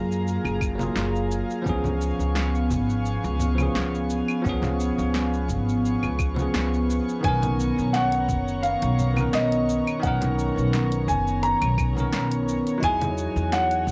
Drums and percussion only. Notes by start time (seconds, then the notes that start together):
0.12 shaker
0.28 shaker
0.45 claves, shaker
0.61 kick, claves, shaker
0.79 high conga, shaker
0.96 snare, shaker
1.15 shaker
1.31 shaker
1.50 shaker
1.66 kick, low conga, shaker
1.84 high conga, low conga, shaker
2.01 shaker
2.19 high bongo, shaker
2.35 snare, shaker
2.55 shaker
2.71 kick, high conga, shaker
2.90 shaker
3.06 shaker
3.24 shaker
3.40 low conga, shaker
3.58 high conga, claves, shaker
3.75 snare, shaker
3.94 shaker
4.09 high bongo, shaker
4.28 claves, shaker
4.45 kick, low conga, shaker
4.62 snare, high conga, low conga, shaker
4.80 shaker
4.98 high bongo, shaker
5.14 snare, shaker
5.34 shaker
5.48 kick, high conga, shaker
5.69 shaker
5.86 shaker
6.03 claves, shaker
6.19 kick, claves, shaker
6.37 high conga, shaker
6.54 snare, shaker
6.74 shaker
6.91 shaker
7.09 shaker
7.24 kick, closed hi-hat, low conga, shaker
7.42 closed hi-hat, high conga, low conga, shaker
7.60 shaker
7.77 high bongo, shaker
7.94 snare, closed hi-hat, shaker
8.12 closed hi-hat, shaker
8.28 kick, high conga, shaker
8.48 shaker
8.63 closed hi-hat, shaker
8.82 closed hi-hat, shaker
8.98 low conga, shaker
9.16 high conga, claves, shaker
9.33 snare, closed hi-hat, shaker
9.52 closed hi-hat, shaker
9.68 high bongo, shaker
9.87 closed hi-hat, claves, shaker
10.03 kick, closed hi-hat, low conga, shaker
10.21 snare, closed hi-hat, high conga, low conga, shaker
10.39 shaker
10.56 high bongo, shaker
10.73 snare, closed hi-hat, shaker
10.92 closed hi-hat, shaker
11.08 kick, high conga, shaker
11.27 shaker
11.43 closed hi-hat, shaker
11.62 closed hi-hat, claves, shaker
11.78 kick, claves, shaker
11.97 high conga, shaker
12.13 snare, closed hi-hat, shaker
12.32 closed hi-hat, shaker
12.49 shaker
12.67 closed hi-hat, shaker
12.83 kick, closed hi-hat, low conga, shaker
13.01 closed hi-hat, high conga, low conga, shaker
13.18 shaker
13.36 high bongo, shaker
13.52 snare, closed hi-hat, shaker
13.71 closed hi-hat, shaker
13.87 kick, high conga, shaker